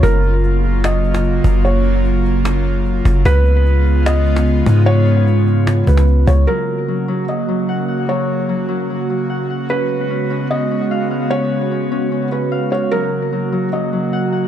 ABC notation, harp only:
X:1
M:4/4
L:1/8
Q:1/4=149
K:F#
V:1 name="Harp"
z8 | z8 | z8 | z8 |
F,2 F, F, F, F, f f | F,2 F, F, F, F, f f | C2 C C C C e e | C2 C C C C e e |
F,2 F, F, F, F, f f |]